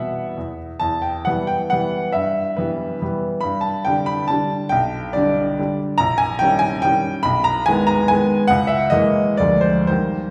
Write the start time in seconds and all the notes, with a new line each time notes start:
Already playing: B2 E3 G3 B3 E5 F#5
0.37 E2
0.80 E2 A5
1.02 G5
1.25 E3 G3 B3 F#5
1.47 G5
1.70 E3 G3 B3 F#5
2.12 G2 E5
2.56 E3 G3 B3 B4
3.02 E3 G3 B3
3.41 G2 B5
3.61 A5
3.85 D3 G3 D4 G5
4.06 B5
4.28 D3 G3 D4 A5
4.69 B1 G5
5.13 D3 G3 D4 D5
5.59 D3 G3 D4
5.98 A#1 A#5
6.18 G#5
6.39 D#3 G3 C#4 G5
6.59 G#5
6.82 D#3 G3 C#4 G5
7.23 B1 B5
7.44 A#5
7.66 D#3 G#3 B3 G#5
7.87 A#5
8.08 D#3 G#3 B3 G#5
8.48 C#2 F#5
8.67 E5
8.90 E3 G#3 A#3 D#5
9.37 D2 F3 G#3 A#3 D5
9.61 C5
9.87 D#3 G3 A#3 C5